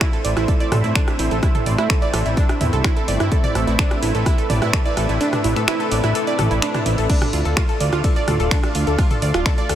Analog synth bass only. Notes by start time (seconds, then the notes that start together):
0.25 A1
0.37 A1
0.72 A1
0.84 A2
1.19 A1
1.31 A1
1.66 A1
1.79 A2
2.14 A1
2.26 A1
2.61 E2
2.73 C2
3.08 G1
3.20 G1
3.55 A1
3.67 A1
4.03 A1
4.15 A1
4.50 A1
4.62 A2
4.97 A1
5.09 A1
5.44 A1
5.56 A2
5.92 A1
6.04 A1
6.39 A1
6.51 A1
6.86 A1
6.98 A1
7.33 D2
7.45 D2
7.80 D2
7.93 D2
8.28 D2
8.40 D1
8.75 D2
8.87 D2
9.22 D2
9.34 D1
9.69 D2